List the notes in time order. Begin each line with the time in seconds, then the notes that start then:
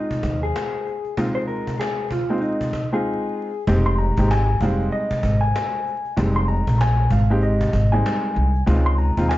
Already playing: G#3 C4 D#4 F4
0.11 muted upright bass stroke, cajon bass
0.23 D#2, cajon bass
0.42 G#4, cajon slap
0.56 cajon slap
0.73 cajon slap
0.87 cajon slap
1.05 cajon slap
1.17 G#3 C4 D#4 F4, cajon bass
1.35 C5, cajon slap
1.47 A#4, cajon slap
1.67 cajon bass
1.79 G#4, cajon slap
1.98 cajon slap
2.11 F4, cajon bass
2.30 G#3 C4 D#4 F4, cajon slap
2.41 D#4, cajon slap
2.61 cajon bass
2.73 cajon bass
2.92 G#3 C4 D#4 F4 G#4, cajon slap
3.67 F1 G#3 C4 D#4 G4, cajon bass
3.85 C6, cajon slap
3.98 A#5, cajon slap
4.17 G#1 G#3 C4 D#4 G4, cajon bass
4.31 G#5, cajon slap
4.61 F1 G3 G#3 C4 D#4 F5, cajon bass
4.82 cajon slap
4.92 D#5, cajon slap
5.11 muted upright bass stroke, cajon bass
5.23 G#1, cajon bass
5.41 G#5, cajon slap
5.56 cajon slap
5.73 cajon slap
5.87 cajon slap
6.05 cajon slap
6.17 F1 G3 G#3 C4 D#4, cajon bass
6.35 C6, cajon slap
6.48 A#5, cajon slap
6.67 A#1, cajon bass
6.81 G#5, cajon slap
7.11 G#1 F5, cajon bass
7.30 G#3 C4 D#4 G4, cajon slap
7.42 D#5, cajon slap
7.61 cajon bass
7.73 G#1, cajon bass
7.92 G3 G#3 C4 D#4 G#5, cajon slap
8.06 cajon slap
8.23 cajon slap
8.36 C2, cajon slap
8.55 cajon slap
8.66 C#2 G#3 C4 D#4 F4, cajon bass
8.85 C6, cajon slap
8.98 A#5, cajon slap
9.17 D#2 G#3 C4 D#4 F4, cajon bass
9.29 G#5, cajon slap